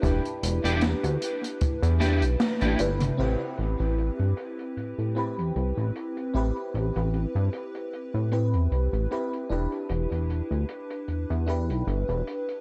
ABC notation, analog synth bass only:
X:1
M:4/4
L:1/16
Q:"Swing 16ths" 1/4=76
K:Am
V:1 name="Analog synth bass" clef=bass
E,,, z E,,, E,,,2 D,, z3 E,,2 B,,, z A,,, G,,,2 | A,,, z A,,, A,,,2 G,, z2 A,, A,,2 E,, C,, A,,, z2 | A,,, z A,,, A,,,2 G,, z3 A,,2 E,, C,, A,,, z2 | E,,, z E,,, E,,,2 D,, z2 E,, E,,2 B,,, G,,, E,,, z2 |]